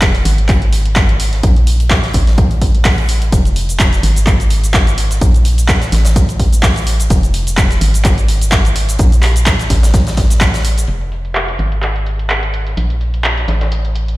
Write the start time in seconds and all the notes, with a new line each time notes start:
Already playing: F1
0.02 kick, snare, clap, closed hi-hat
0.14 snare, closed hi-hat
0.25 G#1, closed hi-hat, open hi-hat
0.38 closed hi-hat
0.49 kick, clap, closed hi-hat
0.62 closed hi-hat
0.73 closed hi-hat, open hi-hat
0.86 closed hi-hat
0.95 kick, snare, clap, closed hi-hat
1.09 closed hi-hat
1.20 closed hi-hat, open hi-hat
1.33 snare, closed hi-hat
1.43 A#1, kick, closed hi-hat
1.56 closed hi-hat
1.67 closed hi-hat, open hi-hat
1.80 closed hi-hat
1.90 kick, snare, clap, closed hi-hat
2.03 snare, closed hi-hat
2.13 A1, kick, closed hi-hat, open hi-hat
2.27 snare, closed hi-hat
2.38 kick, closed hi-hat
2.50 closed hi-hat
2.62 kick, closed hi-hat, open hi-hat
2.75 closed hi-hat
2.85 kick, snare, clap, closed hi-hat, open hi-hat
2.98 closed hi-hat
3.09 closed hi-hat, open hi-hat
3.22 closed hi-hat
3.32 F1, kick, closed hi-hat, shaker
3.45 closed hi-hat, shaker
3.56 closed hi-hat, open hi-hat
3.69 closed hi-hat, shaker
3.80 kick, snare, clap, closed hi-hat, shaker
3.92 snare, closed hi-hat, shaker
4.03 G#1, closed hi-hat, open hi-hat
4.16 closed hi-hat, shaker
4.27 kick, clap, closed hi-hat, shaker
4.40 closed hi-hat, shaker
4.50 closed hi-hat, open hi-hat
4.64 closed hi-hat, shaker
4.74 kick, snare, clap, closed hi-hat, shaker
4.87 closed hi-hat, shaker
4.98 closed hi-hat, open hi-hat
5.10 snare, closed hi-hat, shaker
5.21 A#1, kick, closed hi-hat, shaker
5.34 closed hi-hat, shaker
5.45 closed hi-hat, open hi-hat
5.58 closed hi-hat, shaker
5.68 kick, snare, clap, closed hi-hat, shaker
5.81 snare, closed hi-hat, shaker
5.92 A1, snare, closed hi-hat, open hi-hat
6.05 snare, closed hi-hat, shaker
6.16 kick, closed hi-hat, shaker
6.29 closed hi-hat, shaker
6.40 kick, closed hi-hat, open hi-hat
6.53 closed hi-hat, shaker
6.63 kick, snare, clap, closed hi-hat, open hi-hat, shaker
6.76 closed hi-hat, shaker
6.87 closed hi-hat, open hi-hat
7.00 closed hi-hat, shaker
7.10 F1, kick, closed hi-hat, shaker
7.23 closed hi-hat, shaker
7.34 closed hi-hat, open hi-hat
7.47 closed hi-hat, shaker
7.57 kick, snare, clap, closed hi-hat, shaker
7.71 snare, closed hi-hat, shaker
7.81 G#1, closed hi-hat, open hi-hat
7.94 closed hi-hat, shaker
8.05 kick, clap, closed hi-hat, shaker
8.18 closed hi-hat, shaker
8.29 closed hi-hat, open hi-hat
8.41 closed hi-hat, shaker
8.52 kick, snare, clap, closed hi-hat, shaker
8.65 closed hi-hat, shaker
8.76 closed hi-hat, open hi-hat
8.88 snare, closed hi-hat, shaker
8.99 A#1, kick, closed hi-hat, shaker
9.12 closed hi-hat, shaker
9.23 clap, closed hi-hat, open hi-hat
9.36 closed hi-hat, shaker
9.46 kick, snare, clap, closed hi-hat, shaker
9.59 snare, closed hi-hat, shaker
9.70 A1, kick, snare, closed hi-hat, open hi-hat
9.83 snare, closed hi-hat, shaker
9.94 kick, snare, closed hi-hat, shaker
10.07 snare, closed hi-hat, shaker
10.17 kick, snare, closed hi-hat, open hi-hat
10.30 snare, closed hi-hat, shaker
10.41 kick, snare, clap, closed hi-hat, shaker
10.54 snare, closed hi-hat, shaker
10.65 closed hi-hat, open hi-hat
10.78 closed hi-hat, shaker
10.87 F1, closed hi-hat
11.01 closed hi-hat
11.12 closed hi-hat
11.25 closed hi-hat
11.35 clap, closed hi-hat
11.48 snare, closed hi-hat
11.58 G#1, closed hi-hat
11.72 closed hi-hat
11.82 clap, closed hi-hat
11.96 closed hi-hat
12.06 closed hi-hat
12.19 closed hi-hat
12.30 clap, closed hi-hat
12.43 closed hi-hat
12.53 closed hi-hat
12.67 snare, closed hi-hat
12.77 A#1, closed hi-hat
12.90 closed hi-hat
13.01 closed hi-hat
13.14 closed hi-hat
13.24 clap, closed hi-hat
13.38 snare, closed hi-hat
13.48 A1, snare, closed hi-hat
13.61 snare, closed hi-hat
13.72 closed hi-hat
13.84 closed hi-hat
13.94 closed hi-hat
14.08 closed hi-hat